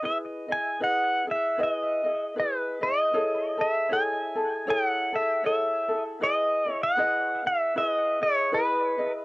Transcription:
0.03 ukulele E4 G#4 B4, pedal steel guitar E5
0.48 ukulele E4 G#4 D#5, pedal steel guitar G#5
0.80 ukulele E4 G#4 B4 D#5, pedal steel guitar F#5
1.27 ukulele E4 G#4
1.31 pedal steel guitar E5
1.58 ukulele E4 G#4 B4 D#5
1.63 pedal steel guitar D#5
2.04 ukulele E4 G#4 D#5
2.36 ukulele E4 G#4 B4 D#5, pedal steel guitar B4
2.81 ukulele E4 G#4 D#5, pedal steel guitar D#5
3.14 ukulele E4 G#4 A4 C#5
3.58 ukulele E4 G#4 A4, pedal steel guitar E5
3.89 ukulele E4 G#4 A4 C#5, pedal steel guitar G#5
4.35 ukulele E4 G#4 A4
4.67 ukulele E4 G#4 A4 C#5, pedal steel guitar G5
4.88 pedal steel guitar F#5
5.13 ukulele E4 G#4 A4, pedal steel guitar E5
5.43 ukulele E4 G#4 A4 C#5, pedal steel guitar E5
5.88 ukulele E4 G#4 A4
6.21 ukulele E4 G#4 B4 D#5, pedal steel guitar D#5
6.66 ukulele E4 G#4 D#5
6.83 pedal steel guitar F#5
6.97 ukulele E4 G#4 B4 D#5
7.45 ukulele E4 G#4, pedal steel guitar E5
7.76 ukulele E4 G#4 B4 D#5, pedal steel guitar E5
7.89 pedal steel guitar D#5
8.21 ukulele E4 G#4 D#5, pedal steel guitar C#5
8.52 ukulele E4 G#4 B4 D#5, pedal steel guitar B4
8.98 ukulele E4 G#4 D#5

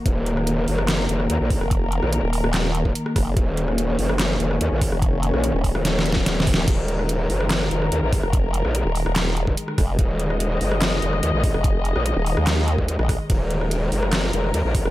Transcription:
Already playing: string section D#3 A#3
0.06 wobble bass D#1, string section A#4, kick, closed hi-hat
0.26 closed hi-hat
0.37 cross-stick
0.47 closed hi-hat
0.68 wobble bass F#1, open hi-hat
0.78 cross-stick
0.88 snare, clap, closed hi-hat
1.09 wobble bass F1, closed hi-hat
1.20 cross-stick
1.30 wobble bass D#2, closed hi-hat
1.41 wobble bass A#1
1.50 kick, open hi-hat
1.61 wobble bass F1, cross-stick
1.71 kick, closed hi-hat
1.92 closed hi-hat
2.03 wobble bass A#1, cross-stick
2.13 closed hi-hat
2.23 wobble bass D#1
2.33 open hi-hat
2.44 wobble bass D#1, cross-stick
2.54 snare, clap, closed hi-hat
2.75 closed hi-hat
2.85 wobble bass D#1, kick
2.95 closed hi-hat
3.06 cross-stick
3.16 wobble bass F1, kick, cross-stick, open hi-hat
3.37 wobble bass D#1, string section C#4, kick, closed hi-hat
3.57 closed hi-hat
3.68 cross-stick
3.78 closed hi-hat
3.99 wobble bass F#1, open hi-hat
4.09 cross-stick
4.19 snare, clap, closed hi-hat
4.40 wobble bass F1, closed hi-hat
4.51 cross-stick
4.61 wobble bass D#2, closed hi-hat
4.72 wobble bass A#1
4.81 kick, open hi-hat
4.92 wobble bass F1, cross-stick
5.02 kick, closed hi-hat
5.23 closed hi-hat
5.34 wobble bass A#1, cross-stick
5.44 closed hi-hat
5.54 wobble bass D#1
5.64 kick, open hi-hat
5.75 wobble bass D#1, cross-stick
5.85 snare, closed hi-hat
5.99 snare
6.06 closed hi-hat
6.13 kick, snare
6.26 snare, closed hi-hat
6.40 snare
6.47 kick, open hi-hat
6.54 wobble bass D#1, snare
6.68 wobble bass D#1, string section G#3 A#4, kick, closed hi-hat, crash
6.88 closed hi-hat
6.99 cross-stick
7.09 closed hi-hat
7.30 wobble bass F#1, open hi-hat
7.41 cross-stick
7.50 snare, clap, closed hi-hat
7.71 wobble bass F1, closed hi-hat
7.82 cross-stick
7.92 wobble bass D#2, closed hi-hat
8.03 wobble bass A#1
8.13 kick, open hi-hat
8.23 wobble bass F1, cross-stick
8.33 kick, closed hi-hat
8.54 closed hi-hat
8.65 wobble bass A#1, cross-stick
8.75 closed hi-hat
8.85 wobble bass D#1
8.95 open hi-hat
9.06 wobble bass D#1, cross-stick
9.16 snare, clap, closed hi-hat
9.37 closed hi-hat
9.47 wobble bass D#1, kick
9.57 closed hi-hat
9.68 cross-stick
9.78 wobble bass F1, kick, cross-stick, open hi-hat
9.99 wobble bass D#1, string section D#5, kick, closed hi-hat
10.20 closed hi-hat
10.30 cross-stick
10.40 closed hi-hat
10.61 wobble bass F#1, open hi-hat
10.72 cross-stick
10.82 snare, clap, closed hi-hat
11.02 wobble bass F1, closed hi-hat
11.13 cross-stick
11.23 wobble bass D#2, closed hi-hat
11.34 wobble bass A#1
11.44 kick, open hi-hat
11.54 wobble bass F1, cross-stick
11.64 kick, closed hi-hat
11.85 closed hi-hat
11.96 wobble bass A#1, cross-stick
12.06 closed hi-hat
12.16 wobble bass D#1
12.26 open hi-hat
12.37 wobble bass D#2, cross-stick
12.47 snare, clap, closed hi-hat
12.68 closed hi-hat
12.78 wobble bass D#2, kick
12.88 closed hi-hat
12.99 wobble bass A#1, cross-stick
13.09 kick, cross-stick, open hi-hat
13.30 wobble bass D#1, string section A#4, kick, closed hi-hat, ride
13.51 closed hi-hat
13.61 cross-stick
13.71 closed hi-hat, ride
13.92 wobble bass F#1, open hi-hat
14.03 cross-stick
14.13 snare, clap, closed hi-hat, ride
14.33 wobble bass F1, closed hi-hat
14.44 cross-stick
14.54 wobble bass D#2, closed hi-hat, ride
14.65 wobble bass A#1
14.75 kick, open hi-hat
14.85 wobble bass F1, cross-stick

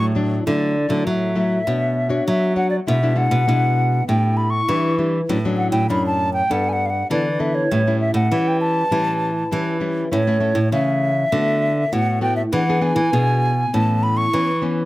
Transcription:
Already playing: nylon-string guitar A2 F#3 A3 D4
0.15 nylon-string guitar F#3 A3 D4
0.46 nylon-string guitar D3 F#3 A3 E4, flute D5
0.89 nylon-string guitar D3 F#3 A3 E4
1.07 nylon-string guitar A2 F#3, flute E5
1.35 nylon-string guitar F#3 A3 E4
1.67 nylon-string guitar B2 B3 D4 F#4 C#5
2.09 nylon-string guitar D4 F#4 C#5
2.27 nylon-string guitar F#3, flute E5
2.56 nylon-string guitar D4 F#4 C#5, flute F#5
2.70 flute D5
2.87 nylon-string guitar B2 G#3 D4 E4, flute E5
3.03 nylon-string guitar G#3 D4 E4
3.15 nylon-string guitar G#3 D4 E4, flute F#5
3.31 nylon-string guitar B2
3.47 nylon-string guitar B2 G#3 D4 E4
4.08 nylon-string guitar A2 G3 D4 E4, flute G5
4.37 flute B5
4.50 flute C#6
4.68 nylon-string guitar E3 G3 D4 E4
4.98 nylon-string guitar G3 D4 E4
5.29 nylon-string guitar A2 F#3 C#4 D4
5.45 nylon-string guitar F#3 C#4 D4
5.57 flute F#5
5.71 nylon-string guitar A2, flute G5
5.89 nylon-string guitar F#2 A2 F#3 C#4 D4, flute B5
6.06 flute A5
6.33 flute G5
6.50 nylon-string guitar G2 G3 B3 D4 A4, flute F#5
6.69 flute F#5 G#5
6.86 flute F5 F#5
7.10 nylon-string guitar D3 E3 B3 D4 A4, flute D5
7.39 nylon-string guitar B3 D4 A4, flute E5
7.55 flute C#5
7.71 nylon-string guitar A2 G3 C#4 E4
7.87 nylon-string guitar G3 C#4 E4
8.00 flute E5
8.14 nylon-string guitar A2, flute F#5
8.31 nylon-string guitar E3 G3 C#4 E4
8.48 flute G5
8.61 flute A5
8.91 nylon-string guitar A2 E3 G3 C#4 E4
9.51 nylon-string guitar E3 G3 C#4 E4
9.80 nylon-string guitar G3 C#4 E4
10.11 nylon-string guitar A2 A3 C#4 E4, flute C#5
10.27 nylon-string guitar A3 C#4 E4
10.40 nylon-string guitar A3 C#4 E4
10.55 nylon-string guitar A2
10.72 nylon-string guitar C#3 E3 A3 C#4 E4, flute E5
11.32 nylon-string guitar D3 A3 B3 F#4
11.92 nylon-string guitar A2 A3 B3 F#4, flute F#5
12.21 nylon-string guitar A3 B3 F#4, flute G5
12.36 flute E5
12.52 nylon-string guitar E3 B3 D4 G#4, flute F#5
12.69 nylon-string guitar B3 D4 G#4
12.81 nylon-string guitar B3 D4 G#4, flute G#5
12.96 nylon-string guitar E3
13.12 nylon-string guitar B2 B3 D4 G#4
13.73 nylon-string guitar A2 E3 B3 C#4, flute A5
14.03 flute B5
14.17 flute C#6
14.33 nylon-string guitar E3 B3 C#4
14.62 nylon-string guitar E3 B3 C#4

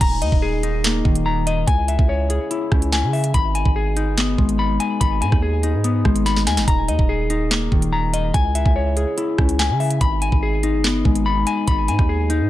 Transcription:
0.01 808-style bass D#1, french horn section A#2 G#3 D#4, clean electric guitar A#5, kick, closed hi-hat, crash
0.22 808-style bass D#2, clean electric guitar D#5, closed hi-hat
0.32 808-style bass D#1, kick
0.42 clean electric guitar G#4
0.63 clean electric guitar D#4, closed hi-hat
0.84 clean electric guitar A#3, snare, clap, closed hi-hat
1.05 808-style bass D#1, clean electric guitar D#3, kick
1.15 closed hi-hat
1.26 clean electric guitar A#5
1.47 clean electric guitar D#5, closed hi-hat
1.67 808-style bass C#2, french horn section C#3 E4, clean electric guitar G#5, kick, closed hi-hat
1.88 clean electric guitar E5, closed hi-hat
1.99 808-style bass C#2, kick
2.09 clean electric guitar C#5
2.30 clean electric guitar G#4, closed hi-hat
2.51 clean electric guitar E4, closed hi-hat
2.72 808-style bass C#2, clean electric guitar C#4, kick, cross-stick
2.82 closed hi-hat
2.92 clean electric guitar G#5, snare, clap, closed hi-hat
3.03 808-style bass C#3
3.13 clean electric guitar E5, open hi-hat
3.24 closed hi-hat
3.34 808-style bass G#1, french horn section B2 D#4, clean electric guitar B5, kick, closed hi-hat
3.55 clean electric guitar G#5, closed hi-hat
3.65 808-style bass G#1, kick
3.76 clean electric guitar G#4
3.97 clean electric guitar D#4, closed hi-hat
4.07 808-style bass G1
4.17 clean electric guitar B3, snare, clap, closed hi-hat
4.38 808-style bass G#1, clean electric guitar G#3, kick
4.49 closed hi-hat
4.59 clean electric guitar B5
4.80 clean electric guitar G#5, closed hi-hat
5.01 808-style bass G#1, clean electric guitar B5, kick, closed hi-hat
5.22 808-style bass G#2, clean electric guitar G#5, closed hi-hat
5.32 808-style bass D#2, kick, cross-stick
5.42 clean electric guitar G#4
5.63 clean electric guitar D#4, closed hi-hat
5.74 808-style bass G#2
5.84 clean electric guitar B3, closed hi-hat
6.05 808-style bass G#1, clean electric guitar G#3, kick, cross-stick
6.16 closed hi-hat
6.26 clean electric guitar B5, snare, closed hi-hat
6.36 snare
6.47 808-style bass D#2, clean electric guitar G#5, snare, closed hi-hat
6.57 808-style bass G#1, snare, closed hi-hat
6.68 808-style bass D#1, french horn section A#2, clean electric guitar A#5, kick, closed hi-hat
6.88 808-style bass D#2, clean electric guitar D#5, closed hi-hat
6.99 808-style bass D#1, kick
7.09 clean electric guitar G#4
7.30 clean electric guitar D#4, closed hi-hat
7.51 clean electric guitar A#3, snare, clap, closed hi-hat
7.72 808-style bass D#1, clean electric guitar D#3, kick
7.82 closed hi-hat
7.92 clean electric guitar A#5
8.14 clean electric guitar D#5, closed hi-hat
8.34 808-style bass C#2, french horn section C#3 E4, clean electric guitar G#5, kick, closed hi-hat
8.55 clean electric guitar E5, closed hi-hat
8.66 808-style bass C#2, kick
8.76 clean electric guitar C#5
8.97 clean electric guitar G#4, closed hi-hat
9.17 clean electric guitar E4, closed hi-hat
9.38 808-style bass C#2, clean electric guitar C#4, kick, cross-stick
9.49 closed hi-hat
9.59 clean electric guitar G#5, snare, clap, closed hi-hat
9.70 808-style bass C#3
9.80 clean electric guitar E5, open hi-hat
9.90 closed hi-hat
10.01 808-style bass G#1, french horn section B2 G#3 D#4, clean electric guitar B5, kick, closed hi-hat
10.22 clean electric guitar G#5, closed hi-hat
10.32 808-style bass G#1, kick
10.43 clean electric guitar G#4
10.63 clean electric guitar D#4, closed hi-hat
10.74 808-style bass G1
10.84 clean electric guitar B3, snare, clap, closed hi-hat
11.05 808-style bass G#1, clean electric guitar G#3, kick
11.15 closed hi-hat
11.26 clean electric guitar B5
11.47 clean electric guitar G#5, closed hi-hat
11.68 808-style bass G#1, clean electric guitar B5, kick, closed hi-hat
11.88 808-style bass G#2, clean electric guitar G#5, closed hi-hat
11.99 808-style bass D#2, kick, cross-stick
12.09 clean electric guitar G#4
12.30 clean electric guitar D#4, closed hi-hat
12.41 808-style bass G#2

